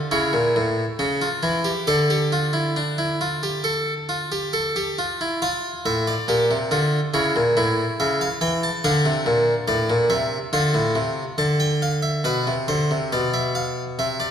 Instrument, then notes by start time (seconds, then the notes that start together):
harpsichord
0.11 C#3 E4 C#5
0.33 A#2
0.56 A2
0.99 C#3 C#4
1.21 F4
1.43 E3 E4
1.64 G4
1.87 D3 A4 D5
2.10 G4
2.32 F4
2.53 E4
2.76 D4
2.98 E4
3.21 F4
3.43 G4
3.64 A4
4.09 F4
4.32 G4
4.53 A4
4.76 G4
4.99 F4
5.21 E4
5.42 F4 F5
5.86 A2 E5
6.07 D5
6.28 A#2 G4
6.51 C3
6.71 D3 F4
7.14 C#3 E4 C#5
7.36 A#2
7.57 A2 E4
8.00 C#3 E5
8.21 F5
8.41 E3 G5
8.63 A5
8.84 D3 D4 F5
9.05 C3
9.26 A#2
9.68 A2 D5
9.90 A#2
10.10 C3 E5
10.53 D3 F4 F5
10.74 A2
10.95 C3
11.38 D3 A5
11.60 G5
11.82 F5
12.03 E5
12.24 B2 B4
12.47 C3
12.68 D3 C5
12.91 C3
13.12 B2 D5
13.34 E5
13.55 F5
13.99 C3 E5
14.20 D5